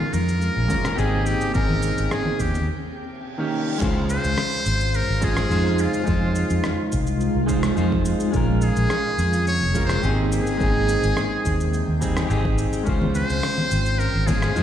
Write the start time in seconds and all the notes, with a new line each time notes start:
Already playing: C#3 G#3 A#3 C#4 F4 G#4 A#4
0.00 high conga
0.13 F2 A#4, shaker
0.29 shaker
0.42 shaker
0.57 A#1
0.68 G#3 C#4 F4 A#4, kick, high conga, low conga, shaker
0.83 cross-stick, low conga, shaker
0.96 G#1 C4 D#4 G4 G#4, shaker
1.26 C3 G4 G5, shaker
1.41 shaker
1.52 G#1 C4 D#4 G4 A#4, kick, shaker
1.57 G#4
1.70 high conga
1.82 shaker
1.98 G#1, shaker
2.11 G#4, cross-stick, shaker
2.25 high conga
2.40 D#2 G4, kick, shaker
2.54 high conga, shaker
2.68 reverse cymbal
3.38 D#3 A#3 C#4 G4
3.78 C#2 C#3 G#3 C#4 F4 C5, kick, crash, shaker
3.84 C5
4.10 C5, shaker
4.24 C#2, shaker
4.38 cross-stick, shaker
4.66 G#1, shaker
4.81 shaker
4.94 A#4, shaker
5.09 G#1
5.21 G#3 C#4 F4 G#4 C5, kick, shaker
5.37 cross-stick, shaker
5.49 F2 G#3 D#4 F4 C5, shaker
5.78 D#3 G#3 F4, shaker
5.94 shaker
6.04 G#3 D#4 F4, shaker
6.08 F2 C5, kick
6.35 shaker
6.50 F2, shaker
6.64 cross-stick, shaker
6.92 C2, kick, shaker
7.07 shaker
7.20 shaker
7.35 C2
7.46 G#3 D#4 F4 C5, kick, shaker
7.63 cross-stick, shaker
7.75 F2 G#3 D#4 F4 C5, shaker
7.92 kick
8.05 shaker
8.20 shaker
8.31 A#1 C#3 G#3 A#3 C#4 F4 G#4, kick, shaker
8.36 A#4
8.62 G#4, shaker
8.76 A#1, shaker
8.90 cross-stick, shaker
9.19 F2, shaker
9.33 shaker
9.47 C#5, shaker
9.61 F1
9.74 G#3 C#4 F4 A#4, kick, shaker
9.85 C5
9.89 cross-stick, shaker
10.02 G#1 C4 D#4 G4 G#4, shaker
10.32 C3 G#4 G5, shaker
10.47 shaker
10.57 G#1 G#3 C4 D#4, kick, shaker
10.63 G#4
10.89 shaker
11.03 G#1, shaker
11.17 cross-stick, shaker
11.45 D#2, kick, shaker
11.60 shaker
11.74 shaker
11.88 D#2
12.01 G3 C4 D#4 G#4, kick, shaker
12.17 cross-stick, shaker
12.28 G#1 C4 D#4 G4 G#4, shaker
12.45 kick
12.58 shaker
12.73 shaker
12.83 C#2 C#3 G#3 C#4 F4 C5, kick, shaker
12.88 F4 C5
13.02 high conga
13.15 C5, shaker
13.30 C#2, shaker
13.43 cross-stick, shaker
13.58 high conga
13.71 G#1, shaker
13.86 shaker
13.99 A#4, shaker
14.16 G#1
14.27 G#3 C#4 F4 G#4 C5, kick, high conga, low conga, shaker
14.42 cross-stick, shaker
14.55 F2 G#3 D#4 F4 C5, shaker